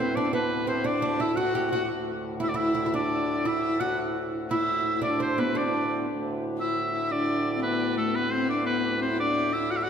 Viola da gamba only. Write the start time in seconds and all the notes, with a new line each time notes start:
0.00 C4
0.16 D4
0.27 C4
0.33 B3
0.67 C4
0.85 D4
1.20 E4
1.38 F#4
1.73 F#4
2.43 E4
2.57 E4
2.95 D4
3.47 E4
3.81 F#4
4.52 E4
4.97 E4
5.03 D4
5.38 B3
5.55 D4
5.62 C4
5.69 D4
6.58 E4
6.93 E4
7.11 D4
7.56 C4
7.64 B3
7.97 A3
8.14 B3
8.32 C4
8.50 D4
8.66 B3
9.02 C4
9.11 E4
9.18 D4
9.54 E4
9.72 F#4
9.84 F#4